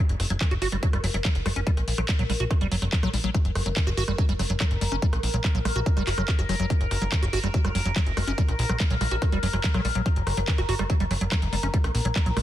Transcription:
0.00 A#4
0.09 F#1, closed hi-hat
0.20 F#1, cross-stick, open hi-hat
0.30 F#1 F#3, closed hi-hat
0.41 E3, kick, cross-stick, clap, closed hi-hat
0.51 F#1 F#4, closed hi-hat
0.62 G1 F#4, open hi-hat
0.72 F#1 G3, cross-stick, closed hi-hat
0.83 F#3, kick, closed hi-hat
0.93 F#1 G3, cross-stick, closed hi-hat
1.04 F#1 F#3, open hi-hat
1.14 F#1 F#3, closed hi-hat
1.25 F#3, kick, cross-stick, clap, closed hi-hat
1.35 F#1, closed hi-hat
1.46 F#1 G3, cross-stick, open hi-hat
1.56 F#1 C#4, closed hi-hat
1.67 G3, kick, closed hi-hat
1.77 A#1, cross-stick, closed hi-hat
1.88 A#1, open hi-hat
1.98 A#1 F#3, cross-stick, closed hi-hat
2.09 G3, kick, clap, closed hi-hat
2.19 A#1 F#3, closed hi-hat
2.30 A#1 G3, cross-stick, open hi-hat
2.40 A#1 F#4, closed hi-hat
2.51 F#3, kick, cross-stick, closed hi-hat
2.61 F#1 G3, closed hi-hat
2.72 F#1 F#3, open hi-hat
2.82 F#1 F#3, cross-stick, closed hi-hat
2.93 F#3, kick, clap, closed hi-hat
3.03 A#1 F#3, cross-stick, closed hi-hat
3.13 A#1 G3, open hi-hat
3.24 A#1 F#3, closed hi-hat
3.35 F#3, kick, cross-stick, closed hi-hat
3.45 F#1, closed hi-hat
3.55 F#1, cross-stick, open hi-hat
3.66 F#1 F#3, closed hi-hat
3.76 E3, kick, clap, closed hi-hat
3.87 F#1 F#4, cross-stick, closed hi-hat
3.97 G1 F#4, open hi-hat
4.08 F#1 G3, cross-stick, closed hi-hat
4.18 F#3, kick, closed hi-hat
4.29 F#1 G3, closed hi-hat
4.39 F#1 F#3, cross-stick, open hi-hat
4.50 F#1 F#3, closed hi-hat
4.60 F#3, kick, cross-stick, clap, closed hi-hat
4.71 F#1, closed hi-hat
4.81 F#1 G3, open hi-hat
4.92 F#1 C#4, cross-stick, closed hi-hat
5.02 G3, kick, closed hi-hat
5.13 A#1, cross-stick, closed hi-hat
5.23 A#1, open hi-hat
5.34 A#1 F#3, closed hi-hat
5.44 G3, kick, cross-stick, clap, closed hi-hat
5.55 A#1 F#3, closed hi-hat
5.65 A#1 G3, cross-stick, open hi-hat
5.76 A#1 F#4, closed hi-hat
5.86 F#3, kick, closed hi-hat
5.97 F#1 G3, cross-stick, closed hi-hat
6.07 F#1 F#4, clap, open hi-hat
6.18 F#1 F#3, cross-stick, closed hi-hat
6.28 F#4, kick, clap, closed hi-hat
6.39 F#1 F#4, closed hi-hat
6.49 F#1 F#3, cross-stick, open hi-hat
6.60 F#1 F#3, closed hi-hat
6.70 F#3, kick, closed hi-hat
6.81 F#1, closed hi-hat
6.91 F#1, cross-stick, open hi-hat
7.02 F#1 F#3, closed hi-hat
7.12 E3, kick, cross-stick, clap, closed hi-hat
7.23 F#1 F#4, closed hi-hat
7.33 G1 F#4, open hi-hat
7.44 F#1 G3, cross-stick, closed hi-hat
7.54 F#3, kick, closed hi-hat
7.65 F#1 G3, cross-stick, closed hi-hat
7.75 F#1 F#3, open hi-hat
7.86 F#1 F#3, closed hi-hat
7.96 F#3, kick, cross-stick, clap, closed hi-hat
8.06 F#1, closed hi-hat
8.17 F#1 G3, cross-stick, open hi-hat
8.27 F#1 C#4, closed hi-hat
8.38 G3, kick, closed hi-hat
8.48 A#1, cross-stick, closed hi-hat
8.59 A#1, open hi-hat
8.69 A#1 F#3, cross-stick, closed hi-hat
8.80 G3, kick, clap, closed hi-hat
8.90 A#1 F#3, closed hi-hat
9.01 A#1 G3, cross-stick, open hi-hat
9.11 A#1 F#4, closed hi-hat
9.22 F#3, kick, cross-stick, closed hi-hat
9.32 F#1 G3, closed hi-hat
9.43 F#1 F#3, open hi-hat
9.53 F#1 F#3, cross-stick, closed hi-hat
9.64 F#3, kick, clap, closed hi-hat
9.74 A#1 F#3, cross-stick, closed hi-hat
9.85 A#1 G3, open hi-hat
9.95 A#1 F#3, closed hi-hat
10.06 F#3, kick, cross-stick, closed hi-hat
10.16 F#1, closed hi-hat
10.27 F#1, cross-stick, open hi-hat
10.37 F#1 F#3, closed hi-hat
10.48 E3, kick, clap, closed hi-hat
10.58 F#1 F#4, cross-stick, closed hi-hat
10.69 G1 F#4, open hi-hat
10.79 F#1 G3, cross-stick, closed hi-hat
10.90 F#3, kick, closed hi-hat
11.00 F#1 G3, closed hi-hat
11.11 F#1 F#3, cross-stick, open hi-hat
11.21 F#1 F#3, closed hi-hat
11.32 F#3, kick, cross-stick, clap, closed hi-hat
11.42 F#1, closed hi-hat
11.53 F#1 G3, open hi-hat
11.63 F#1 C#4, cross-stick, closed hi-hat
11.74 G3, kick, closed hi-hat
11.84 A#1, cross-stick, closed hi-hat
11.95 A#1, open hi-hat
12.05 A#1 F#3, closed hi-hat
12.16 G3, kick, cross-stick, clap, closed hi-hat
12.26 A#1 F#3, closed hi-hat
12.37 A#1 G3, cross-stick, open hi-hat

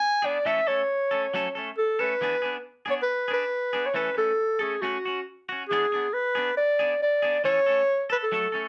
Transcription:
Already playing: G#5
0.22 B3 D4 G#4 D5
0.45 E3 A3 C#4 A4 E5
0.67 A3 C#4 A4 C#5
1.11 A3 C#4 A4
1.34 F#3 A3 C#4 A4
1.55 A3 C#4 A4
1.78 A4
1.99 A3 C#4 A4 B4
2.21 E3 B3 D4 G#4
2.42 B3 D4 G#4
2.86 B3 D4 G#4
2.90 C#5
3.03 B4
3.28 D4 G#4, muted clean electric guitar stroke
3.33 B4
3.73 B3 D4 G#4
3.86 C#5
3.94 E3 A3 C#4 A4 B4
4.15 A3 C#4 A4, muted clean electric guitar stroke
4.59 A3 C#4 G#4 A4
4.81 A3 C#4 F#4
5.05 C#4 F#4
5.49 C#4 F#4
5.69 E3 B3 D4 G#4
5.92 B3 D4 G#4
6.14 B4
6.35 B3 D4 G#4
6.57 D5
6.79 B3 D4 G#4
7.02 D5
7.22 B3 D4 G#4
7.44 E3 C#4 A4 C#5, muted clean electric guitar stroke
7.66 A3 C#4 A4
8.10 A4 B4, muted clean electric guitar stroke
8.23 A4
8.32 F#3 A3 A4, muted clean electric guitar stroke
8.52 A3 C#4 A4

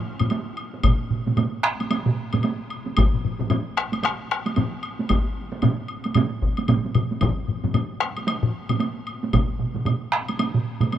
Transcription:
0.19 taiko low-mid, taiko high, high woodblock
0.30 taiko high, high woodblock
0.57 high woodblock
0.74 taiko high
0.83 taiko, taiko mid, taiko high, high woodblock
1.11 taiko mid
1.26 taiko mid, taiko high
1.37 taiko mid, taiko high, high woodblock
1.63 taiko rim, high woodblock
1.80 taiko high, high woodblock
1.91 taiko high, high woodblock
2.06 taiko mid
2.33 taiko mid, taiko high, high woodblock
2.43 taiko high, high woodblock
2.70 high woodblock
2.87 taiko high
2.97 taiko, taiko low-mid, taiko high, high woodblock
3.14 taiko low-mid
3.25 taiko low-mid
3.39 taiko low-mid, taiko high
3.50 taiko low-mid, taiko high, high woodblock
3.77 taiko rim, high woodblock
3.92 taiko high, high woodblock
4.03 taiko rim, taiko high, high woodblock
4.31 taiko rim
4.46 taiko high, high woodblock
4.56 taiko low-mid, taiko high, high woodblock
4.83 high woodblock
4.99 taiko high
5.09 taiko, taiko high, high woodblock
5.52 taiko high
5.62 taiko low-mid, taiko mid, taiko high, high woodblock
5.88 high woodblock
6.04 taiko high, high woodblock
6.15 taiko low-mid, taiko mid, taiko high, high woodblock
6.43 taiko
6.57 taiko high, high woodblock
6.68 taiko low-mid, taiko mid, taiko high, high woodblock
6.85 taiko high
6.95 taiko low-mid, taiko mid, high woodblock
7.11 taiko high
7.21 taiko, taiko low-mid, taiko high, high woodblock
7.48 taiko low-mid
7.64 taiko low-mid, taiko high
7.74 taiko low-mid, taiko high, high woodblock
8.01 taiko rim, high woodblock
8.17 taiko high, high woodblock
8.28 taiko high, high woodblock
8.43 taiko low-mid
8.69 taiko low-mid, taiko high, high woodblock
8.80 taiko high, high woodblock
9.07 high woodblock
9.23 taiko high
9.33 taiko, taiko mid, taiko high, high woodblock
9.60 taiko mid
9.75 taiko mid, taiko high
9.85 taiko mid, taiko high, high woodblock
10.12 taiko rim, high woodblock
10.28 taiko high, high woodblock
10.39 taiko high, high woodblock
10.54 taiko mid
10.81 taiko mid, taiko high, high woodblock
10.92 taiko high, high woodblock

